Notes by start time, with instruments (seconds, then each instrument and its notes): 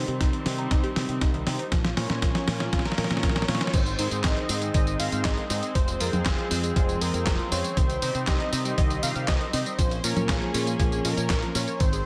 Already playing: string section D#3 G3 C4, analog polysynth C4 D#4 G4 C5
0.08 fingered electric bass C3, synth arpeggio sound G3, closed hi-hat
0.21 fingered electric bass C2, synth arpeggio sound D#4, kick, snare, closed hi-hat
0.33 synth arpeggio sound D#3, closed hi-hat
0.46 fingered electric bass C3, synth arpeggio sound C4, analog polysynth C4 D#4 G4 C5, snare, open hi-hat
0.58 synth arpeggio sound D#4, closed hi-hat
0.71 fingered electric bass C2, synth arpeggio sound D#4, kick, snare, closed hi-hat
0.84 synth arpeggio sound G4, closed hi-hat
0.96 fingered electric bass C3, analog polysynth C4 D#4 G4 D#5, synth arpeggio sound C4, snare, open hi-hat
1.09 fingered electric bass C3, synth arpeggio sound C4, closed hi-hat
1.21 fingered electric bass C2, synth arpeggio sound D#4, kick, snare, closed hi-hat
1.34 synth arpeggio sound D#3, closed hi-hat
1.47 fingered electric bass C3, analog polysynth C4 D#4 G4 C5, synth arpeggio sound C4, snare, open hi-hat
1.59 synth arpeggio sound D#4, closed hi-hat
1.72 fingered electric bass A#1, synth arpeggio sound F3, string section F3 A#3 C#4, kick, snare, closed hi-hat
1.85 synth arpeggio sound F3, snare, closed hi-hat
1.97 fingered electric bass A#2, analog polysynth C#4 F4 A#4 C#5, synth arpeggio sound C#4, snare, open hi-hat
2.10 fingered electric bass A#2, synth arpeggio sound A#3, snare, closed hi-hat
2.22 fingered electric bass A#1, synth arpeggio sound F4, kick, snare, closed hi-hat
2.35 synth arpeggio sound F3, snare, closed hi-hat
2.48 fingered electric bass A#2, analog polysynth C#4 F4 A#4 C#5, synth arpeggio sound C#4, snare, open hi-hat
2.60 synth arpeggio sound F4, snare, closed hi-hat
2.73 fingered electric bass A#1, synth arpeggio sound F4, kick, snare, closed hi-hat
2.79 snare
2.85 synth arpeggio sound A#4, snare, closed hi-hat
2.92 snare
2.98 fingered electric bass A#2, analog polysynth C#4 F4 A#4 D#5, synth arpeggio sound C#4, analog synth lead A#4, snare, open hi-hat
3.04 snare
3.11 fingered electric bass A#2, analog polysynth C#4 F4 A#4 C#5, synth arpeggio sound C#4, snare, closed hi-hat
3.17 snare
3.23 fingered electric bass A#1, synth arpeggio sound F4, kick, snare, closed hi-hat
3.29 snare
3.36 synth arpeggio sound F3, snare, closed hi-hat
3.42 snare
3.48 fingered electric bass A#2, analog polysynth C#4 F4 A#4 C#5, synth arpeggio sound C#4, analog synth lead C#5, snare, open hi-hat
3.55 snare
3.61 synth arpeggio sound F4, snare, closed hi-hat
3.67 snare
3.74 fingered electric bass G#1, synth arpeggio sound D#3, string section D#3 G#3 C4, analog synth lead C5, kick, closed hi-hat, crash, tambourine
3.86 synth arpeggio sound D#3, closed hi-hat, tambourine
3.99 fingered electric bass G#2, synth arpeggio sound D#3, analog polysynth C4 D#4 G#4 C5, open hi-hat, tambourine
4.11 fingered electric bass G#2, synth arpeggio sound C4, closed hi-hat, tambourine
4.24 fingered electric bass G#1, synth arpeggio sound G#4, analog synth lead D#5, kick, snare, clap, closed hi-hat, tambourine
4.37 synth arpeggio sound D#3, closed hi-hat
4.49 fingered electric bass G#2, analog polysynth C4 D#4 G#4 C5, synth arpeggio sound C4, open hi-hat, tambourine
4.62 synth arpeggio sound G#3, closed hi-hat, tambourine
4.74 fingered electric bass G#1, synth arpeggio sound D#3, analog synth lead D#5, kick, closed hi-hat, tambourine
4.87 synth arpeggio sound D#3, closed hi-hat, tambourine
5.00 fingered electric bass G#2, synth arpeggio sound D#3, analog polysynth C4 D#4 G#4 D#5, analog synth lead F5, open hi-hat, tambourine
5.12 fingered electric bass G#2, analog polysynth C4 D#4 G#4 C5, synth arpeggio sound C4, closed hi-hat, tambourine
5.25 fingered electric bass G#1, synth arpeggio sound G#4, analog synth lead D#5, kick, snare, clap, closed hi-hat, tambourine
5.37 synth arpeggio sound D#3, closed hi-hat
5.50 fingered electric bass G#2, analog polysynth C4 D#4 G#4 C5, synth arpeggio sound C4, analog synth lead D#5, open hi-hat, tambourine
5.63 synth arpeggio sound G#3, closed hi-hat, tambourine
5.75 fingered electric bass F1, synth arpeggio sound F3, string section F3, analog synth lead C5, kick, closed hi-hat, tambourine
5.88 synth arpeggio sound F3, closed hi-hat, tambourine
6.00 fingered electric bass F2, synth arpeggio sound F3, analog polysynth C4 F4 G#4 C5, analog synth lead A#4, open hi-hat, tambourine
6.13 fingered electric bass F2, synth arpeggio sound C4, closed hi-hat, tambourine, high conga
6.26 fingered electric bass F1, analog synth lead G#4, synth arpeggio sound G#4, kick, snare, clap, closed hi-hat, tambourine
6.38 synth arpeggio sound F3, closed hi-hat
6.51 fingered electric bass F2, analog polysynth C4 F4 G#4 C5, synth arpeggio sound C4, open hi-hat, tambourine
6.64 synth arpeggio sound G#3, closed hi-hat, tambourine
6.76 fingered electric bass F1, synth arpeggio sound F3, kick, closed hi-hat, tambourine
6.89 synth arpeggio sound F3, closed hi-hat, tambourine
7.01 fingered electric bass F2, synth arpeggio sound F3, analog polysynth C4 F4 G#4 D#5, analog synth lead A#4, open hi-hat, tambourine
7.14 fingered electric bass F2, synth arpeggio sound C4, analog polysynth C4 F4 G#4 C5, closed hi-hat, tambourine
7.26 fingered electric bass F1, synth arpeggio sound G#4, kick, snare, clap, closed hi-hat, tambourine
7.39 synth arpeggio sound F3, closed hi-hat
7.52 fingered electric bass F2, synth arpeggio sound C4, analog polysynth C4 F4 G#4 C5, analog synth lead C#5, open hi-hat, tambourine
7.64 synth arpeggio sound G#3, closed hi-hat, tambourine
7.77 fingered electric bass C2, synth arpeggio sound D#3, string section D#3 G3, analog synth lead C5, kick, closed hi-hat, tambourine
7.90 synth arpeggio sound D#3, closed hi-hat, tambourine
8.02 fingered electric bass C3, synth arpeggio sound D#3, analog polysynth C4 D#4 G4 C5, open hi-hat, tambourine
8.15 fingered electric bass C3, synth arpeggio sound C4, closed hi-hat, tambourine
8.27 fingered electric bass C2, synth arpeggio sound G4, analog synth lead D#5, kick, snare, clap, closed hi-hat, tambourine
8.40 synth arpeggio sound D#3, closed hi-hat
8.52 fingered electric bass C3, synth arpeggio sound C4, analog polysynth C4 D#4 G4 C5, open hi-hat, tambourine
8.65 synth arpeggio sound G3, closed hi-hat, tambourine
8.78 fingered electric bass C2, synth arpeggio sound D#3, analog synth lead D#5, kick, closed hi-hat, tambourine
8.90 synth arpeggio sound D#3, closed hi-hat, tambourine
9.03 fingered electric bass C3, synth arpeggio sound D#3, analog polysynth C4 D#4 G4 D#5, analog synth lead F5, open hi-hat, tambourine
9.16 fingered electric bass C3, synth arpeggio sound C4, analog polysynth C4 D#4 G4 C5, closed hi-hat, tambourine
9.28 fingered electric bass C2, synth arpeggio sound G4, analog synth lead D#5, kick, snare, clap, closed hi-hat, tambourine
9.41 synth arpeggio sound D#3, closed hi-hat
9.53 fingered electric bass C3, synth arpeggio sound C4, analog polysynth C4 D#4 G4 C5, analog synth lead D#5, open hi-hat, tambourine
9.66 synth arpeggio sound G3, closed hi-hat, tambourine
9.79 fingered electric bass A#1, synth arpeggio sound F3, string section F3 A#3 C#4, analog synth lead C5, kick, closed hi-hat, tambourine
9.91 synth arpeggio sound F3, closed hi-hat, tambourine
10.04 fingered electric bass A#2, synth arpeggio sound F3, analog polysynth C#4 F4 A#4 C#5, analog synth lead A#4, open hi-hat, tambourine
10.16 fingered electric bass A#2, synth arpeggio sound C#4, closed hi-hat, tambourine, high conga
10.29 fingered electric bass A#1, analog synth lead G#4, synth arpeggio sound A#4, kick, snare, clap, closed hi-hat, tambourine
10.42 synth arpeggio sound F3, closed hi-hat
10.54 fingered electric bass A#2, analog polysynth C#4 F4 A#4 C#5, synth arpeggio sound C#4, open hi-hat, tambourine
10.67 synth arpeggio sound A#3, closed hi-hat, tambourine
10.79 fingered electric bass A#1, synth arpeggio sound F3, kick, closed hi-hat, tambourine
10.92 synth arpeggio sound F3, closed hi-hat, tambourine
11.05 fingered electric bass A#2, synth arpeggio sound F3, analog polysynth C#4 F4 A#4 D#5, analog synth lead A#4, open hi-hat, tambourine
11.17 fingered electric bass A#2, analog polysynth C#4 F4 A#4 C#5, synth arpeggio sound C#4, closed hi-hat, tambourine
11.30 fingered electric bass A#1, synth arpeggio sound A#4, kick, snare, clap, closed hi-hat, tambourine
11.42 synth arpeggio sound F3, closed hi-hat
11.55 fingered electric bass A#2, analog polysynth C#4 F4 A#4 C#5, synth arpeggio sound C#4, analog synth lead C#5, open hi-hat, tambourine
11.68 synth arpeggio sound A#3, closed hi-hat, tambourine
11.80 fingered electric bass G#1, synth arpeggio sound D#3, string section D#3 G#3 C4, analog synth lead C5, kick, closed hi-hat, tambourine
11.93 synth arpeggio sound G#4, closed hi-hat, tambourine